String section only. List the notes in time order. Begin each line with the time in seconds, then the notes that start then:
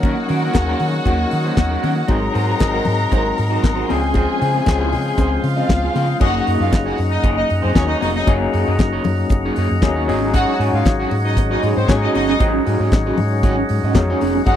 Already playing: F#4 F#5
2.09 A#4 A#5
3.89 G#4 G#5
5.43 F4 F5
6.21 F#4 F#5
6.61 F4 F5
6.86 F#4 F#5
7.11 D#4 D#5
7.37 D#4 D#5
7.62 C4 C5
7.75 C#4 C#5
7.87 D#4 D#5
8.01 D#4 D#5
8.16 D#4 D#5
10.34 F#4 F#5
10.74 F4 F5
11.00 F#4 F#5
11.24 D#4 D#5
11.51 D#4 D#5
11.76 C4 C5
11.89 C#4 C#5
12.02 D#4 D#5
12.14 D#4 D#5
12.28 D#4 D#5
14.46 F#4 F#5